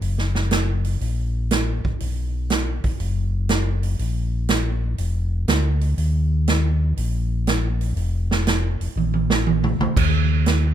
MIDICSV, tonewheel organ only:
0, 0, Header, 1, 2, 480
1, 0, Start_track
1, 0, Key_signature, -6, "minor"
1, 0, Tempo, 496689
1, 29, Time_signature, 4, 2, 24, 8
1, 10380, End_track
2, 0, Start_track
2, 0, Title_t, "Tonewheel organ"
2, 0, Program_c, 0, 16
2, 14, Note_on_c, 0, 30, 79
2, 941, Note_off_c, 0, 30, 0
2, 975, Note_on_c, 0, 34, 81
2, 1746, Note_off_c, 0, 34, 0
2, 1781, Note_on_c, 0, 34, 38
2, 1861, Note_off_c, 0, 34, 0
2, 1944, Note_on_c, 0, 35, 78
2, 2710, Note_off_c, 0, 35, 0
2, 2744, Note_on_c, 0, 35, 40
2, 2823, Note_off_c, 0, 35, 0
2, 2900, Note_on_c, 0, 30, 81
2, 3823, Note_off_c, 0, 30, 0
2, 3859, Note_on_c, 0, 34, 80
2, 4782, Note_off_c, 0, 34, 0
2, 4816, Note_on_c, 0, 29, 82
2, 5266, Note_off_c, 0, 29, 0
2, 5295, Note_on_c, 0, 38, 76
2, 5746, Note_off_c, 0, 38, 0
2, 5775, Note_on_c, 0, 39, 81
2, 6701, Note_off_c, 0, 39, 0
2, 6738, Note_on_c, 0, 34, 85
2, 7663, Note_off_c, 0, 34, 0
2, 7697, Note_on_c, 0, 29, 83
2, 8468, Note_off_c, 0, 29, 0
2, 8509, Note_on_c, 0, 29, 42
2, 8587, Note_off_c, 0, 29, 0
2, 8656, Note_on_c, 0, 34, 83
2, 9428, Note_off_c, 0, 34, 0
2, 9464, Note_on_c, 0, 34, 37
2, 9543, Note_off_c, 0, 34, 0
2, 9631, Note_on_c, 0, 39, 84
2, 10380, Note_off_c, 0, 39, 0
2, 10380, End_track
0, 0, End_of_file